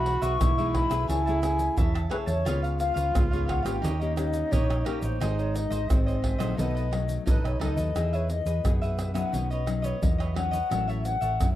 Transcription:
Already playing: B1 B2 E3 G#3 D#4 F#4 B5
0.05 muted cavaquinho stroke, pandeiro
0.22 B1 G#4 B4 E5 C#6, pandeiro, shaker
0.41 B1 B2 E3 G#3 D#4 E4, pandeiro, tamborim, shaker, surdo
0.58 E3 G#3 D#4 G#4 B4 E5, pandeiro, shaker
0.73 D#4 G#4 B4 E5 B5, pandeiro, tamborim, surdo
0.90 B1 A3 E4 G#4 B4 E5, pandeiro, tamborim, shaker
1.08 C#2 C#3 E4 G#4 C#5 E5 G#5 A5, pandeiro, shaker, surdo
1.26 A3 E4 G#4 C#5 E5 A5, pandeiro, shaker
1.42 A3 E4 G#4 G#5, muted cavaquinho stroke, pandeiro, tamborim, shaker
1.59 pandeiro, shaker
1.77 E2 C#3 G#4 C#5 E5 A5, pandeiro, shaker, surdo
1.94 C#5 E5 A5, pandeiro, tamborim, shaker
2.10 A3 E4 G#4 B4 C#5 E5 A5, pandeiro, tamborim
2.26 E2 C#5 E5 A5, pandeiro, shaker
2.45 C#2 C#3 B3 F4 G#4 B4 C#5 F5, pandeiro, tamborim, shaker, surdo
2.63 B4 C#5 F5, pandeiro, shaker
2.78 F5, muted cavaquinho stroke, pandeiro, shaker
2.94 C#2 B4 C#5 F5, pandeiro, shaker
3.15 C#2 G#2 B3 F4 G#4, pandeiro, tamborim, shaker, surdo
3.31 B3 F4 G#4 B4 C#5 F5, pandeiro, shaker
3.47 F4 B4 C#5 F5 F#5, pandeiro, tamborim, surdo
3.63 G#1 A#3 C#4 G4 B4 C#5 F5 G5, pandeiro, tamborim, shaker
3.82 D#2 D#3 D#4 G4 C#5 D#5, pandeiro, shaker, surdo
4.00 A#3 C#4 G4 C#5 D#5, pandeiro, shaker
4.16 A#3 C#4 G4 D#5, muted cavaquinho stroke, pandeiro, tamborim, shaker
4.33 pandeiro, shaker
4.51 A#1 A#2 D#4 G4 C#5 D#5, pandeiro, shaker, surdo
4.70 G4 C#5 D#5, pandeiro, tamborim, shaker
4.85 A#3 C#4 D#4 G4 A#4 C#5 D#5, pandeiro, tamborim
5.02 A1 G4 C5 C#5 D#5, pandeiro, shaker
5.20 G#1 G#2 D#3 G#3 C4 D#4 G#4 C5 D#5, pandeiro, tamborim, shaker, surdo
5.38 G#4 C5 C#5 D#5, pandeiro, shaker
5.54 D#5, muted cavaquinho stroke, pandeiro, shaker
5.70 G#1 G#4 C5 D#5, pandeiro, shaker
5.88 G#1 D#3 G#3 C4 E5, pandeiro, tamborim, shaker, surdo
5.97 D#5
6.06 G#4 C5 C#5 D#5, pandeiro, shaker
6.15 D#5
6.22 D#4 G#4 C5 D#5 E5, pandeiro, tamborim, surdo
6.38 A#1 F#3 A3 D#4 G#4 C5 D#5, pandeiro, tamborim, shaker
6.57 B1 B2 B3 D#4 A4 B4 D#5, pandeiro, shaker, surdo
6.75 A4 B4 D#5, pandeiro, shaker
6.91 F#3 A3 D#4, muted cavaquinho stroke, pandeiro, tamborim
7.09 pandeiro, shaker
7.26 A1 F#2 D#4 A4 B4 D#5, pandeiro, shaker, surdo
7.44 B1 A4 B4 C#5 D#5, pandeiro, tamborim, shaker
7.60 C#2 F#3 A3 D#4 A4 B4 D#5, pandeiro, tamborim
7.77 D#2 A4 B4 D#5, pandeiro, shaker
7.95 E2 E3 B3 D#4 G#4 B4 E5, pandeiro, tamborim, shaker, surdo
8.13 G#4 B4 C#5 E5, pandeiro, shaker
8.29 D#5, muted cavaquinho stroke, pandeiro, shaker
8.46 E2 G#4 B4, pandeiro, shaker
8.64 F#2 B2 B3 D#4 G#4, pandeiro, tamborim, shaker, surdo
8.82 G#4 B4 E5, pandeiro, shaker
8.99 E5, pandeiro, tamborim, shaker
9.14 F#3 C#4 D#4 G#4 B4 E5 F#5, pandeiro, tamborim, shaker
9.32 B1 B2 F#4 B4 C#5 D#5, pandeiro, shaker, surdo
9.50 B4 C#5 D#5, pandeiro, shaker
9.66 F#3 C#4 D#4, muted cavaquinho stroke, pandeiro, tamborim, shaker
9.82 B4 C#5 D#5, pandeiro, shaker
10.02 E2 F#3 C#4 D#4 D#5, pandeiro, shaker, surdo
10.18 B4 C#5 D#5 E5, pandeiro, tamborim, shaker
10.34 F#3 C#4 D#4 F#4 B4 C#5 D#5 F#5, pandeiro, tamborim
10.51 B4 C#5 D#5, pandeiro, shaker
10.70 A1 A2 F#3 C#4 E4 F#4 A4 C#5 E5, pandeiro, tamborim, shaker, surdo
10.88 A4 C#5 E5, pandeiro, shaker
11.04 F#5, muted cavaquinho stroke, pandeiro, shaker
11.21 A1 A4 C#5 E5, pandeiro, shaker
11.40 F#2 A2 F#3 C#4 E4, pandeiro, tamborim, shaker, surdo

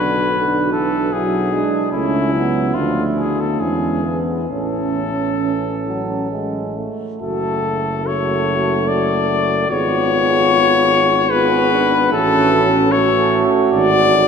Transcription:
Already playing: B1 D3 D4 F#4 B4
0.31 D3 D4
0.72 E3 A4
1.12 F#3 E4 G#4
1.52 G#3 D4
1.92 C#2 A3 C#4 E4
2.33 F#3 B3
2.75 D2 F3 A3 D4 F4
3.16 G#4
3.40 A4
3.59 E2 E3 G#3 C#4 G#4
4.04 B3
4.49 A1 E3 C#4 A4
5.41 E3
5.87 F#3
6.31 G#3
6.77 A3
7.21 F#1 A3 F#4 A4
8.04 A3 F#4 A4 C#5
8.88 D5
9.69 G#1 B3 F4 G#4 C#5
11.30 B3 F4 G#4 B4
11.72 D4
12.11 A1 A3 C#4 F#4 A4
12.91 A3 C#4 F#4 C#5
13.73 G#1 D5

